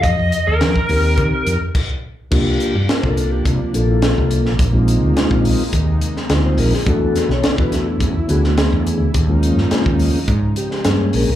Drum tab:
CC |------------x---|x---------------|----------------|----------------|
HH |x-x-x-o-x-x-----|--x-x-x-x-x-x-x-|x-x-x-o-x-x-x-o-|x-x-x-x-x-x-x-x-|
SD |----o-----------|----o-------o--o|----o------oo--o|--ooo-o----oo---|
BD |o----o--o---o---|o----o--o-------|o----o--o-------|o----o--o-------|

CC |----------------|
HH |x-x-x-o-x-x-x-o-|
SD |---oo------oo---|
BD |o----o--o-------|